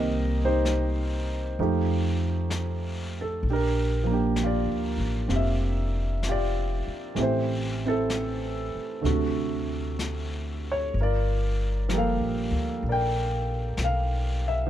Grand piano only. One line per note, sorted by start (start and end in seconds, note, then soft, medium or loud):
0.00 1.56 D#3 soft
0.00 1.59 A#3 soft
0.00 1.60 C4 soft
0.00 0.43 G4 soft
0.00 1.58 A#4 soft
0.00 0.35 D#5 medium
0.44 1.59 D#4 soft
0.44 1.60 G4 soft
0.44 3.15 C5 medium
1.60 3.45 F3 soft
1.60 3.45 A3 soft
1.60 3.45 D#4 soft
1.60 3.45 G4 soft
3.21 3.48 A4 medium
3.50 4.09 D4 soft
3.50 4.12 G4 soft
3.50 4.38 A#4 medium
4.04 7.15 F3 soft
4.04 7.17 A#3 soft
4.11 7.19 D4 soft
4.11 4.43 G4 medium
4.43 5.27 F4 soft
4.43 5.30 G4 soft
4.43 5.38 D5 medium
5.28 7.16 C4 soft
5.28 6.27 F4 soft
5.28 6.27 G4 soft
5.36 6.22 E5 medium
6.28 7.15 F4 soft
6.28 7.15 G4 medium
6.28 7.17 D5 medium
7.15 9.04 E3 soft
7.15 9.01 A3 soft
7.15 7.84 C4 soft
7.15 7.18 G4 soft
7.20 7.85 E4 soft
7.20 9.03 G4 soft
7.20 7.80 C5 medium
7.85 10.62 C4 soft
7.85 10.63 E4 soft
7.85 10.76 A4 medium
9.01 10.94 C3 soft
9.01 10.92 D3 soft
9.01 10.93 A3 soft
9.06 10.95 F#4 soft
10.72 10.99 C#5 medium
11.01 12.82 F4 soft
11.01 11.93 A#4 soft
11.01 11.96 D5 medium
11.89 14.65 F3 soft
11.89 14.70 G3 soft
11.89 14.68 A#3 soft
11.94 14.70 G4 soft
11.94 13.76 A4 soft
11.94 12.87 A#4 soft
11.98 12.90 F5 medium
12.89 14.70 A#4 soft
12.89 14.70 D5 soft
12.89 13.78 G5 medium
13.84 14.41 F5 medium
14.48 14.70 E5 medium
14.67 14.70 F3 soft